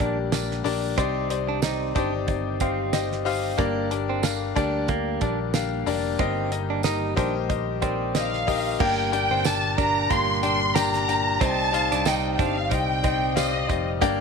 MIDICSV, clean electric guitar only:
0, 0, Header, 1, 2, 480
1, 0, Start_track
1, 0, Key_signature, -2, "minor"
1, 0, Tempo, 652174
1, 718, Time_signature, 4, 2, 24, 8
1, 10456, End_track
2, 0, Start_track
2, 0, Title_t, "Clean electric guitar"
2, 0, Program_c, 0, 27
2, 1, Note_on_c, 0, 62, 69
2, 128, Note_off_c, 0, 62, 0
2, 719, Note_on_c, 0, 60, 86
2, 947, Note_off_c, 0, 60, 0
2, 1094, Note_on_c, 0, 62, 67
2, 1193, Note_off_c, 0, 62, 0
2, 1200, Note_on_c, 0, 63, 75
2, 1427, Note_off_c, 0, 63, 0
2, 1440, Note_on_c, 0, 62, 77
2, 1567, Note_off_c, 0, 62, 0
2, 1922, Note_on_c, 0, 60, 73
2, 2272, Note_off_c, 0, 60, 0
2, 2640, Note_on_c, 0, 58, 105
2, 2867, Note_off_c, 0, 58, 0
2, 3014, Note_on_c, 0, 60, 67
2, 3114, Note_off_c, 0, 60, 0
2, 3359, Note_on_c, 0, 62, 70
2, 3587, Note_off_c, 0, 62, 0
2, 3598, Note_on_c, 0, 58, 83
2, 3826, Note_off_c, 0, 58, 0
2, 3837, Note_on_c, 0, 62, 76
2, 3965, Note_off_c, 0, 62, 0
2, 4558, Note_on_c, 0, 60, 93
2, 4786, Note_off_c, 0, 60, 0
2, 4932, Note_on_c, 0, 62, 67
2, 5032, Note_off_c, 0, 62, 0
2, 5035, Note_on_c, 0, 63, 68
2, 5265, Note_off_c, 0, 63, 0
2, 5274, Note_on_c, 0, 62, 70
2, 5404, Note_off_c, 0, 62, 0
2, 5756, Note_on_c, 0, 60, 68
2, 6109, Note_off_c, 0, 60, 0
2, 6478, Note_on_c, 0, 58, 99
2, 6706, Note_off_c, 0, 58, 0
2, 6853, Note_on_c, 0, 60, 70
2, 6953, Note_off_c, 0, 60, 0
2, 7199, Note_on_c, 0, 62, 76
2, 7427, Note_off_c, 0, 62, 0
2, 7437, Note_on_c, 0, 58, 87
2, 7666, Note_off_c, 0, 58, 0
2, 7677, Note_on_c, 0, 62, 75
2, 7805, Note_off_c, 0, 62, 0
2, 8397, Note_on_c, 0, 60, 103
2, 8626, Note_off_c, 0, 60, 0
2, 8772, Note_on_c, 0, 62, 76
2, 8872, Note_off_c, 0, 62, 0
2, 8878, Note_on_c, 0, 63, 75
2, 9106, Note_off_c, 0, 63, 0
2, 9120, Note_on_c, 0, 62, 81
2, 9247, Note_off_c, 0, 62, 0
2, 9597, Note_on_c, 0, 60, 70
2, 9950, Note_off_c, 0, 60, 0
2, 10316, Note_on_c, 0, 58, 114
2, 10456, Note_off_c, 0, 58, 0
2, 10456, End_track
0, 0, End_of_file